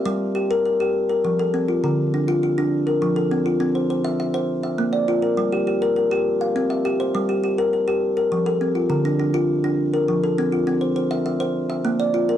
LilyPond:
\new Staff \with { instrumentName = "Kalimba" } { \time 12/8 \key g \dorian \tempo 4. = 136 << { e''8 r8 g'4 bes'4. bes'4 a'4 f'8~ | f'8 r8 d'4 f'4. bes'4 a'4 f'8~ | f'8 c''8 c''4 e''4. e''4 d''4 bes'8~ | bes'8 g'8 g'4 bes'4. f''4 e''4 c''8~ |
c''8 g'8 g'4 bes'4. bes'4 a'4 f'8~ | f'8 d'8 d'4. r4 bes'4 a'4 f'8~ | f'8 c''8 c''4 e''4. e''4 d''4 bes'8 | } \\ { g4 r8 bes'4 g'8 r4 f4 c'4 | d4 r8 f'4 d'8 r4 f4 c'4 | c'4 r8 e''4 c''8 r4 bes4 f'4 | g4 r8 bes'4 g'8 r4 c'4 g'4 |
g4 r8 bes'4 g'8 r4 f4 c'4 | d4 r8 f'4 d'8 r4 f4 c'4 | c'4 r8 e''4 c''8 r4 bes4 f'4 | } >> }